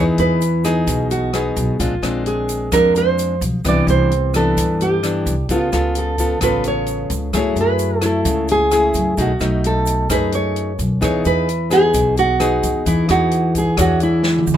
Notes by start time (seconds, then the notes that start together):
Already playing: E2 E3 B3 D#4 G#4
0.18 E2 B4, closed hi-hat, shaker
0.41 closed hi-hat, shaker
0.64 B3 D#4 G#4, cross-stick, closed hi-hat, shaker
0.87 B1 B2, kick, closed hi-hat, shaker
1.11 F#4, closed hi-hat, shaker
1.33 B3 D#4 G#4, cross-stick, closed hi-hat
1.56 B1, kick, closed hi-hat, shaker
1.80 A#1 A#2 G#3 C4 D4 F4, kick, closed hi-hat, shaker
2.02 A#1 G#3 C4 D4, cross-stick, closed hi-hat, shaker
2.26 G#4, closed hi-hat
2.49 closed hi-hat, shaker
2.72 F2 F3 G#3 C4 D4 A#4, kick, cross-stick, closed hi-hat, shaker
2.95 C5, closed hi-hat, shaker
3.18 closed hi-hat, shaker
3.41 B1, kick, closed hi-hat, shaker
3.64 C2 C3 E3 B3 D4 D5, kick, cross-stick, closed hi-hat, shaker
3.87 C2 C5, closed hi-hat, shaker
4.11 closed hi-hat
4.34 E3 B3 D4 A4, cross-stick, closed hi-hat, shaker
4.57 G2, kick, closed hi-hat, shaker
4.81 G4, closed hi-hat, shaker
5.03 E3 B3 D4, cross-stick, closed hi-hat, shaker
5.26 C2, kick, closed hi-hat, shaker
5.49 C#2 C#3 B3 F4 A4, kick, closed hi-hat, shaker
5.72 C#2 B3 F4 A4, cross-stick, closed hi-hat, shaker
5.95 A4, closed hi-hat
6.18 B3 F4 A4, kick, closed hi-hat, shaker
6.41 A1 C#3 B3 F4 A4 B4, kick, cross-stick, closed hi-hat, shaker
6.64 C#5, closed hi-hat, shaker
6.86 closed hi-hat, shaker
7.10 C#2, kick, closed hi-hat, shaker
7.33 F#2 F#3 A3 E4 G#4 C#5, kick, cross-stick, closed hi-hat, shaker
7.56 F#2, closed hi-hat, shaker
7.61 B4
7.79 closed hi-hat, shaker
8.01 A3 E4, cross-stick, closed hi-hat, shaker
8.06 A4
8.25 C#2 C#3, kick, closed hi-hat, shaker
8.48 G#4, closed hi-hat, shaker
8.71 A3 E4 G#4, cross-stick, closed hi-hat, shaker
8.94 F#2, kick, closed hi-hat, shaker
9.17 B1 B2 A3 D#4 F#4 G#4, kick, closed hi-hat, shaker
9.40 B1 A3 D#4, cross-stick, closed hi-hat, shaker
9.64 A4, closed hi-hat
9.86 closed hi-hat, shaker
10.09 F#2 A3 D#4 G#4 B4, kick, cross-stick, closed hi-hat, shaker
10.32 C#5, closed hi-hat, shaker
10.56 closed hi-hat
10.79 B1, kick, closed hi-hat, shaker
11.01 E2 E3 B3 D#4 G#4 C#5, kick, cross-stick, closed hi-hat, shaker
11.25 E2 B4, closed hi-hat, shaker
11.49 closed hi-hat
11.70 B3 D#4 G#4, cross-stick, closed hi-hat, shaker
11.94 B1 B2, kick, closed hi-hat, shaker
12.17 F#4, closed hi-hat, shaker
12.40 B3 D#4 G#4, cross-stick, closed hi-hat, shaker
12.63 E2, kick, closed hi-hat, shaker
12.86 E2 E3 E4, kick, closed hi-hat, shaker
13.09 E2 B3 D#4 F#4 G#4, cross-stick, closed hi-hat, shaker
13.31 closed hi-hat
13.55 G#4, kick, closed hi-hat, shaker
13.77 E2 E3 D4 F#4 G#4 C#5, kick, cross-stick, closed hi-hat, shaker
14.00 E4, closed hi-hat, shaker
14.23 snare
14.38 mid tom
14.47 E2, shaker
14.54 floor tom